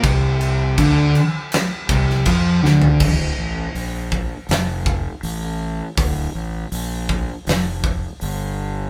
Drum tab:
CC |x-x-x-x-x-x-x---|x---------------|----------------|
HH |----------------|----o---o---o---|o---o---o---o---|
SD |--------o--o--o-|--------o-------|--------o-------|
FT |---------------o|----------------|----------------|
BD |o---o-----o-o---|o-----o---o-----|o-----o---o-----|